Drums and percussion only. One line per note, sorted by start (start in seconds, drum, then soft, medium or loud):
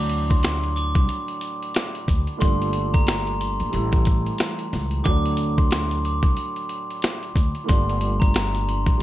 0.10 closed hi-hat medium
0.31 kick loud
0.31 closed hi-hat soft
0.43 snare loud
0.43 snare medium
0.43 closed hi-hat loud
0.64 closed hi-hat medium
0.77 closed hi-hat medium
0.95 kick loud
0.95 closed hi-hat medium
1.09 closed hi-hat medium
1.28 closed hi-hat medium
1.41 closed hi-hat medium
1.63 closed hi-hat medium
1.74 snare loud
1.74 snare medium
1.74 closed hi-hat loud
1.95 closed hi-hat medium
2.08 kick loud
2.08 closed hi-hat medium
2.27 closed hi-hat soft
2.41 kick loud
2.41 closed hi-hat medium
2.62 closed hi-hat medium
2.73 closed hi-hat medium
2.94 kick medium
2.94 closed hi-hat soft
3.07 snare loud
3.07 snare medium
3.07 closed hi-hat loud
3.27 closed hi-hat medium
3.41 closed hi-hat medium
3.60 closed hi-hat medium
3.73 closed hi-hat medium
3.92 kick medium
3.92 closed hi-hat medium
4.05 kick loud
4.05 closed hi-hat medium
4.26 closed hi-hat medium
4.38 snare loud
4.38 snare medium
4.38 closed hi-hat loud
4.59 closed hi-hat medium
4.73 snare soft
4.73 closed hi-hat medium
4.91 closed hi-hat soft
5.05 kick loud
5.05 closed hi-hat medium
5.26 closed hi-hat medium
5.37 closed hi-hat medium
5.58 kick loud
5.58 closed hi-hat soft
5.71 snare loud
5.71 snare medium
5.71 closed hi-hat loud
5.91 closed hi-hat medium
6.05 closed hi-hat medium
6.23 kick loud
6.23 closed hi-hat medium
6.37 closed hi-hat medium
6.56 closed hi-hat medium
6.69 closed hi-hat medium
6.90 closed hi-hat medium
7.02 snare loud
7.02 snare medium
7.02 closed hi-hat loud
7.23 closed hi-hat medium
7.36 kick medium
7.36 closed hi-hat medium
7.55 closed hi-hat soft
7.69 kick loud
7.69 closed hi-hat medium
7.89 closed hi-hat medium
8.01 closed hi-hat medium
8.22 kick loud
8.22 closed hi-hat soft
8.34 snare loud
8.34 closed hi-hat medium
8.55 closed hi-hat medium
8.69 closed hi-hat medium
8.87 kick loud
8.87 closed hi-hat medium